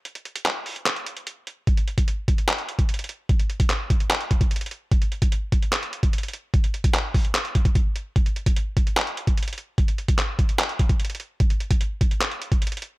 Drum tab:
HH |x-x-x-x-x---o-x-x-x-x-x-x---x---|x-x-x-x-x---x-x-x-x-x-x-xxxxx---|x-x-x-x-x---x-x-x-x-x-x-xxxxx---|x-x-x-x-x---x-x-x-x-x-x-xxxxx---|
CP |--------x-------x---------------|----------------x---------------|--------x-------x---------------|----------------x---------------|
BD |--------------------------------|o-----o-----o---------o---------|o-----o-----o-------o-o---------|o-----o-----o---------o---------|

HH |x-x-x-x-x---o-x-x-x-x-x-x---x---|x-x-x-x-x---x-x-x-x-x-x-xxxxx---|x-x-x-x-x---x-x-x-x-x-x-xxxxx---|x-x-x-x-x---x-x-x-x-x-x-xxxxx---|
CP |--------x-------x---------------|----------------x---------------|--------x-------x---------------|----------------x---------------|
BD |o-----o-----o-------o-o-o-------|o-----o-----o---------o---------|o-----o-----o-------o-o---------|o-----o-----o---------o---------|